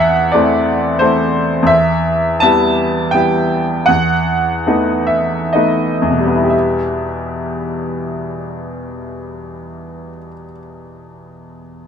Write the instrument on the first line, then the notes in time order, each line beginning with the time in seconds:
upright piano
Already playing: E2 F#5
0.00 E5
0.32 A3 C4 E4 D5
0.99 A3 C4 E4 C5
1.63 E2
1.67 E5
2.40 G3 B3 E4 A5
3.11 G3 B3 E4 G5
3.86 E2 F#5
4.66 A3 B3 D#4
5.07 E5
5.53 A3 B3 D#4 D#5
6.02 E2
6.10 B2
6.18 G3
6.26 B3
6.36 E4
6.44 G4
6.50 E5